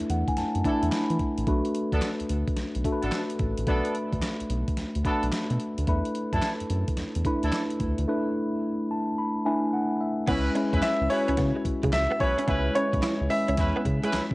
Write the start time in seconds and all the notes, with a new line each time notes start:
Already playing: A3 D4 E4 B4
0.00 E2
0.10 E2 F#5, closed hi-hat
0.28 G#5, kick, closed hi-hat
0.37 F#2 A5, snare, closed hi-hat
0.55 F#2, closed hi-hat
0.64 A3 D4 E4 A4 B4, kick, closed hi-hat
0.83 E2, closed hi-hat
0.92 B5, snare, clap, closed hi-hat
1.10 E3, closed hi-hat
1.19 kick, closed hi-hat
1.38 A1, closed hi-hat
1.47 B1 A3 D4 F#4 B4, kick, closed hi-hat
1.65 closed hi-hat
1.75 closed hi-hat
1.92 D2 B3 D4 A4, kick, closed hi-hat
2.02 snare, clap, closed hi-hat
2.20 D2, closed hi-hat
2.29 D2, closed hi-hat
2.48 kick, closed hi-hat
2.57 B1, snare, closed hi-hat
2.75 B1, closed hi-hat
2.84 A3 D4 F#4 A4, kick, closed hi-hat
2.92 B4
3.02 A1 B3 D4 A4, closed hi-hat
3.12 snare, clap, closed hi-hat
3.30 closed hi-hat
3.39 A1, kick, closed hi-hat
3.58 A1, closed hi-hat
3.67 B1 A3 B3 D4 F#4 A4 B4, kick, closed hi-hat
3.85 closed hi-hat
3.95 closed hi-hat
4.13 D2, kick, closed hi-hat
4.22 snare, clap, closed hi-hat
4.40 B1, closed hi-hat
4.50 B1, closed hi-hat
4.68 kick, closed hi-hat
4.77 D2, snare, closed hi-hat
4.95 D2, closed hi-hat
5.04 A3 B3 D4 F#4 A4 B4, kick, closed hi-hat
5.23 B1, closed hi-hat
5.32 snare, clap, closed hi-hat
5.50 B2, closed hi-hat
5.60 closed hi-hat
5.78 D2, closed hi-hat
5.87 E2 A3 D4 E4 B4, kick, closed hi-hat
6.05 closed hi-hat
6.15 closed hi-hat
6.33 F#2 D4 E4 A4, kick, closed hi-hat
6.42 snare, clap, closed hi-hat
6.60 F#2, closed hi-hat
6.70 F#2, closed hi-hat
6.88 kick, closed hi-hat
6.97 E2, snare, closed hi-hat
7.15 E2, closed hi-hat
7.25 A3 D4 E4 B4, kick, closed hi-hat
7.43 D2 D4 E4 A4, closed hi-hat
7.53 snare, clap, closed hi-hat
7.70 closed hi-hat
7.80 D2, kick, closed hi-hat
7.98 D2, closed hi-hat
8.08 A3 D4 E4 B4
8.91 A5
9.18 B5
9.45 A3 D4 E4 B4 G#5
9.73 F#5
10.01 E5
10.27 C#2 G#3 B3 C#4 E4 B4, kick, closed hi-hat, crash
10.55 G#3 C#4 E4 B4, closed hi-hat
10.73 E2 C#4 E4 B4, muted clean electric guitar stroke, kick, closed hi-hat
10.82 E4 E5, snare, clap, closed hi-hat
11.01 C#2
11.10 G#3 C#4 E4 F#4 B4 C#5, muted clean electric guitar stroke, open hi-hat
11.28 C#2 C#4, closed hi-hat
11.37 C#3 B3, kick, snare, closed hi-hat
11.56 muted clean electric guitar stroke
11.65 C#3, kick, closed hi-hat
11.83 C#3 G#3, kick, closed hi-hat
11.93 C#2 E5, snare, clap, closed hi-hat
12.11 B3
12.20 B1 C#4 E4 B4 C#5, muted clean electric guitar stroke, kick, open hi-hat
12.38 C#4, closed hi-hat
12.48 C#2 G#3 B3 C#4 E4 B4, kick, closed hi-hat
12.75 G#3 C#4 E4 B4 C#5, closed hi-hat
12.93 B1, muted clean electric guitar stroke, kick, closed hi-hat
13.03 E4, snare, clap, closed hi-hat
13.21 C#2
13.30 G#3 C#4 E4 B4 E5, muted clean electric guitar stroke, open hi-hat
13.48 C#2 C#4, closed hi-hat
13.57 E2 C#4 E4 B4, kick, snare, closed hi-hat
13.76 B3
13.85 C#3, muted clean electric guitar stroke, kick, closed hi-hat
14.03 G#3 C#4 E4 B4, closed hi-hat
14.13 C#2, muted clean electric guitar stroke, snare, clap, closed hi-hat
14.31 C#2, kick